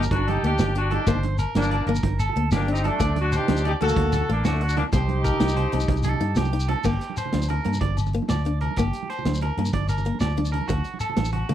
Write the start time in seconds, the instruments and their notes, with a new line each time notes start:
Already playing: steel-string acoustic guitar A#3, clean electric guitar A#4
0.03 low conga, shekere
0.10 fingered electric bass G1, horn section D4 F#4, trumpet D4, kick, closed hi-hat, muted conga
0.21 low conga
0.27 horn section D#4 G4, trumpet D#4, clean electric guitar A4, closed hi-hat, high conga, low agogo
0.36 low conga
0.43 fingered electric bass D2, steel-string acoustic guitar A#3, trumpet D4, horn section D#4 G4, closed hi-hat, low conga
0.53 low conga
0.59 fingered electric bass G1, clean electric guitar G4, snare, closed hi-hat, muted conga, high conga, low conga, low agogo, shekere
0.75 steel-string acoustic guitar D4, trumpet D4, horn section D4 F#4, closed hi-hat, low conga
0.90 trumpet D4, horn section D#4 G4, clean electric guitar A4, closed hi-hat, high conga, low conga, low agogo
1.06 fingered electric bass G1, steel-string acoustic guitar A#3, clean electric guitar C5, kick, closed hi-hat, muted conga, low conga, low agogo, shekere
1.16 low conga
1.23 closed hi-hat, high conga
1.38 clean electric guitar A#4, closed hi-hat, low agogo, shekere
1.55 fingered electric bass G1, horn section A#3 D4, trumpet A#3, steel-string acoustic guitar D4, snare, closed hi-hat, muted conga, high conga
1.62 low conga, shekere
1.71 clean electric guitar D5, closed hi-hat, low conga, low agogo
1.86 fingered electric bass G1, steel-string acoustic guitar A#3, clean electric guitar A#4, closed hi-hat, high conga, low agogo
1.95 low conga, shekere
2.03 fingered electric bass G1, kick, closed hi-hat, muted conga
2.13 low conga
2.19 clean electric guitar A4, closed hi-hat, low agogo, shekere
2.29 low conga
2.36 fingered electric bass D2, steel-string acoustic guitar A#3, closed hi-hat, low conga
2.45 low conga
2.51 fingered electric bass G1, trumpet A#3, horn section A#3 D4, clean electric guitar G4, snare, closed hi-hat, muted conga, high conga, low conga, low agogo, shekere
2.68 horn section C4 D#4, trumpet C4, steel-string acoustic guitar D4, closed hi-hat
2.76 shekere
2.84 horn section A3 D4, trumpet A3, clean electric guitar A4, closed hi-hat, high conga, low conga, low agogo
3.00 fingered electric bass D2, steel-string acoustic guitar A3, clean electric guitar D5, kick, closed hi-hat, muted conga, low conga, low agogo, shekere
3.09 low conga
3.16 horn section D4 F#4, trumpet D4, closed hi-hat, high conga
3.32 trumpet D4, horn section D#4, clean electric guitar C5, snare, closed hi-hat, low agogo, shekere
3.36 horn section G4
3.40 low conga
3.48 fingered electric bass D2, steel-string acoustic guitar D4, snare, closed hi-hat, muted conga, high conga
3.57 low conga, shekere
3.64 trumpet D#4, horn section D#4 G4, clean electric guitar D5, closed hi-hat, low conga, low agogo
3.73 low conga
3.81 fingered electric bass D2, steel-string acoustic guitar A3, clean electric guitar A#3, horn section F#4 A4, trumpet F#4, closed hi-hat, high conga, low agogo
3.88 low conga, shekere
3.96 fingered electric bass D2, kick, closed hi-hat, muted conga
4.06 low conga
4.12 clean electric guitar A4, closed hi-hat, high conga, low agogo, shekere
4.21 low conga
4.28 fingered electric bass A1, steel-string acoustic guitar A3, horn section A#3 D4, trumpet A#3, closed hi-hat, low conga
4.45 fingered electric bass D2, horn section A3 D4, trumpet A3, clean electric guitar F#4, snare, closed hi-hat, muted conga, high conga, low conga, low agogo, shekere
4.61 horn section D4 F#4, trumpet D4, closed hi-hat, low conga
4.69 shekere
4.76 horn section A#3 D4, trumpet A#3, muted clean electric guitar stroke, closed hi-hat, high conga, low conga, low agogo
4.93 fingered electric bass C2, steel-string acoustic guitar C4, horn section D#4 G4, trumpet D#4, clean electric guitar C5, kick, closed hi-hat, muted conga, low agogo, shekere
5.01 low conga
5.08 closed hi-hat, high conga
5.17 low conga
5.24 clean electric guitar A#4, kick, closed hi-hat, low conga, low agogo, shekere
5.33 low conga
5.40 fingered electric bass C2, steel-string acoustic guitar D#4, snare, closed hi-hat, muted conga, high conga, low conga
5.48 low conga, shekere
5.56 clean electric guitar C5, closed hi-hat, low conga, low agogo
5.72 fingered electric bass C2, steel-string acoustic guitar C4, closed hi-hat, high conga, low agogo
5.80 low conga, shekere
5.88 fingered electric bass C2, kick, closed hi-hat, muted conga, low conga
5.96 shekere
6.03 clean electric guitar A4, closed hi-hat, high conga, low agogo, shekere
6.14 low conga
6.20 fingered electric bass G2, steel-string acoustic guitar D#4, closed hi-hat
6.35 fingered electric bass C2, clean electric guitar G4, snare, closed hi-hat, muted conga, high conga, low conga, low agogo, shekere
6.44 shekere
6.53 steel-string acoustic guitar D#4, closed hi-hat, low conga
6.60 shekere
6.68 clean electric guitar A4, closed hi-hat, high conga, low conga, low agogo
6.77 low conga
6.84 fingered electric bass G1, steel-string acoustic guitar A#3, clean electric guitar G4, kick, crash, muted conga, low agogo, shekere
6.93 low conga
7.01 closed hi-hat, shekere
7.10 high conga, low conga
7.17 clean electric guitar C5, closed hi-hat, low agogo, shekere
7.25 low conga
7.32 fingered electric bass D2, steel-string acoustic guitar D4, snare, closed hi-hat, muted conga, high conga, low conga
7.42 shekere
7.48 clean electric guitar A#4, closed hi-hat, low conga, low agogo
7.64 fingered electric bass G2, steel-string acoustic guitar A#3, closed hi-hat, high conga, low conga, low agogo
7.74 low conga, shekere
7.81 fingered electric bass G1, clean electric guitar D5, kick, closed hi-hat, muted conga, low conga
7.90 high conga
7.97 closed hi-hat, low conga, low agogo, shekere
8.06 low conga, shekere
8.13 steel-string acoustic guitar A#3, closed hi-hat
8.22 high conga
8.28 fingered electric bass D2, clean electric guitar D5, snare, closed hi-hat, muted conga, low conga, low agogo, shekere
8.45 steel-string acoustic guitar D4, closed hi-hat
8.61 clean electric guitar A#4, closed hi-hat, low conga, low agogo
8.71 high conga, low conga
8.76 fingered electric bass G1, steel-string acoustic guitar A#3, clean electric guitar G4, kick, closed hi-hat, muted conga, low agogo, shekere
8.87 low conga
8.93 closed hi-hat, shekere
9.03 high conga, low conga
9.10 clean electric guitar C5, snare, closed hi-hat, low agogo
9.19 low conga
9.25 fingered electric bass D2, steel-string acoustic guitar D4, snare, closed hi-hat, muted conga, high conga, low conga
9.34 shekere
9.41 clean electric guitar A#4, closed hi-hat, low conga, low agogo
9.57 fingered electric bass G2, steel-string acoustic guitar A#3, closed hi-hat, high conga, low conga, low agogo
9.65 low conga, shekere
9.73 fingered electric bass G1, clean electric guitar D5, kick, closed hi-hat, muted conga, low conga
9.82 high conga
9.89 clean electric guitar A#4, closed hi-hat, low conga, low agogo, shekere
9.97 low conga, shekere
10.05 steel-string acoustic guitar A#3, closed hi-hat
10.14 high conga
10.20 fingered electric bass D2, clean electric guitar D5, snare, closed hi-hat, muted conga, low conga, low agogo, shekere
10.37 steel-string acoustic guitar D4, closed hi-hat, high conga
10.45 low conga, shekere
10.52 clean electric guitar A#4, closed hi-hat, low conga, low agogo
10.61 high conga, low conga
10.68 fingered electric bass D2, clean electric guitar F#4, muted steel-string acoustic guitar stroke, kick, closed hi-hat, muted conga, low agogo, shekere
10.77 low conga
10.84 closed hi-hat, shekere
10.94 high conga, low conga
11.00 clean electric guitar A4, closed hi-hat, low agogo, shekere
11.10 low conga
11.16 fingered electric bass A1, muted steel-string acoustic guitar stroke, snare, closed hi-hat, muted conga, high conga, low conga
11.25 shekere
11.33 clean electric guitar F#4, closed hi-hat, low conga, low agogo
11.49 fingered electric bass D3, steel-string acoustic guitar A3, closed hi-hat, high conga, low conga, low agogo